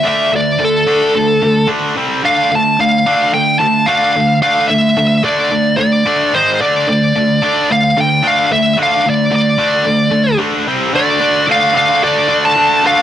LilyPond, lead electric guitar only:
\new Staff \with { instrumentName = "Lead electric guitar" } { \time 4/4 \key d \minor \tempo 4 = 110 e''8 d''8 a'2 r4 | f''8 a''8 f''4 g''8 a''8 f''4 | f''8 e''4 d''4 d''4 c''8 | d''8 d''4. f''8 g''8 f''8 e''8 |
f''8 d''8 d''2 r4 | d''4 f''8 f''8 d''8. a''8. f''8 | }